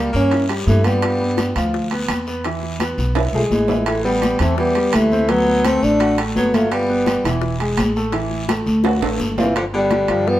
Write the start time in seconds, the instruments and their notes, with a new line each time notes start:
Already playing: baritone saxophone G3, french horn A#3, grand piano A#3 A#4
0.13 upright bass G2, baritone saxophone A#3, french horn C#4, high bongo, high conga, short guiro
0.31 grand piano E4 E5, high bongo, high conga, high timbale, long guiro
0.49 grand piano G3 G4, high bongo, high conga, high timbale
0.67 upright bass G2, baritone saxophone E3, french horn A3, high bongo, low bongo, high conga, short guiro
0.84 baritone saxophone G3, french horn B3, grand piano F4 F5, high conga, high timbale, short guiro
1.02 high bongo, high timbale, long guiro
1.20 grand piano B3 B4, high bongo, high conga
1.37 high bongo, high conga, high timbale, short guiro
1.55 upright bass D2, grand piano F3 F4, high bongo, high conga, high timbale, short guiro
1.74 high bongo, high conga, long guiro
1.91 grand piano B3 B4, high bongo, high conga, high timbale
2.08 upright bass E2, high bongo, low bongo, high conga, high timbale, short guiro
2.27 grand piano B3 B4, short guiro
2.44 grand piano E3 E4, high bongo, high conga, high timbale, long guiro
2.63 high bongo, high conga
2.80 grand piano B3 B4, high bongo, high conga, high timbale, short guiro
2.98 upright bass B1, high bongo, high conga, short guiro
3.15 grand piano E4 E5, high bongo, high conga, high timbale, long guiro
3.33 upright bass B1, baritone saxophone F3, grand piano G#3 G#4, french horn A3, high bongo, high conga
3.50 upright bass A1, baritone saxophone E3, french horn G#3, high bongo, low bongo, high conga, short guiro
3.68 grand piano E4 E5, high conga, low timbale, short guiro
3.86 baritone saxophone E3, french horn A3, high bongo, high timbale, long guiro
4.05 grand piano G3 G4, baritone saxophone G3, french horn B3, high bongo, high conga
4.22 high bongo, high conga, high timbale, short guiro
4.39 upright bass E2, grand piano E3 E4, baritone saxophone A3, french horn C4, high bongo, high conga, high timbale, short guiro
4.58 baritone saxophone G3, french horn B3, high bongo, high conga, long guiro
4.75 grand piano G3 G4, high bongo, high conga, high timbale
4.93 upright bass D2, baritone saxophone E3, french horn A3, high bongo, low bongo, high conga, high timbale, short guiro
5.12 grand piano C4 C5, high conga, short guiro
5.29 baritone saxophone F#3, grand piano F#3 F#4, french horn B3, high bongo, high timbale, long guiro
5.46 high bongo, high conga
5.65 baritone saxophone A3, french horn C4, grand piano C4 C5, high bongo, high conga, high timbale, short guiro
5.82 upright bass A1, baritone saxophone A3, french horn D4, high bongo, high conga, short guiro
6.00 grand piano F#4 F#5, high bongo, high conga, high timbale, long guiro
6.18 grand piano A3 A4, high bongo, high timbale
6.36 upright bass G1, baritone saxophone F#3, french horn B3, high bongo, low bongo, high conga, short guiro
6.54 baritone saxophone F#3, french horn A3, grand piano F4 F5, high conga, high timbale, short guiro
6.71 baritone saxophone G3, french horn B3, high bongo, high conga, high timbale, long guiro
6.89 grand piano B3 B4, high bongo, high conga
7.06 high bongo, high conga, high timbale, short guiro
7.24 upright bass E1, grand piano E3 E4, high bongo, high conga, high timbale, short guiro
7.42 high bongo, high conga, long guiro
7.60 grand piano G#3 G#4, high bongo, high conga, high timbale
7.77 upright bass A1, high bongo, low bongo, high conga, high timbale, short guiro
7.96 grand piano A3 A4, short guiro
8.12 grand piano E3 E4, high bongo, high conga, high timbale, long guiro
8.30 high bongo, high conga
8.48 grand piano A3 A4, high bongo, high conga, high timbale, short guiro
8.66 upright bass D2, high bongo, high conga, short guiro
8.84 grand piano F#4 F#5, high bongo, high timbale, long guiro
9.01 upright bass A1, grand piano A3 A4, high conga, high timbale
9.19 upright bass G1, low bongo, high conga, short guiro
9.32 low bongo
9.38 baritone saxophone C3, french horn E3, grand piano F4 F5, high conga, low timbale, short guiro
9.44 low bongo
9.56 baritone saxophone D3, french horn F3, high bongo, high conga, high timbale
9.73 baritone saxophone D3, french horn G3, grand piano B3 B4, high bongo, high conga
9.91 high bongo, high conga, high timbale
10.08 upright bass G2, grand piano F3 F4, high bongo, high conga, high timbale
10.27 baritone saxophone G3, french horn B3, high bongo, high conga